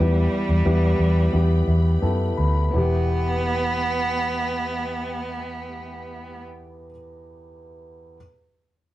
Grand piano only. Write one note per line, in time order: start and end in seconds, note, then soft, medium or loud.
0.00 0.95 E3 medium
0.00 0.47 B3 medium
0.00 0.47 E4 medium
0.00 0.48 G4 medium
0.65 1.14 B3 medium
0.65 1.14 E4 medium
0.65 1.14 G4 medium
1.32 1.82 B3 medium
1.32 1.83 E4 medium
1.32 1.83 G4 medium
1.67 2.00 E5 medium
2.01 2.53 B3 medium
2.01 2.54 E4 medium
2.01 2.54 A4 medium
2.01 2.35 G5 soft
2.37 2.71 B5 medium
2.70 6.89 E2 medium
2.70 6.86 B3 medium
2.70 6.89 E4 medium
2.76 6.92 G4 medium